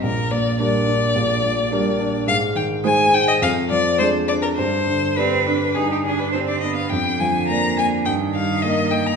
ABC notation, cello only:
X:1
M:4/4
L:1/8
Q:1/4=104
K:Gphr
V:1 name="Cello"
z2 G,2 z2 G,2 | z2 A,2 z2 A,2 | z2 C D E D C =B, | [K:Eb] D,4 E,4 |]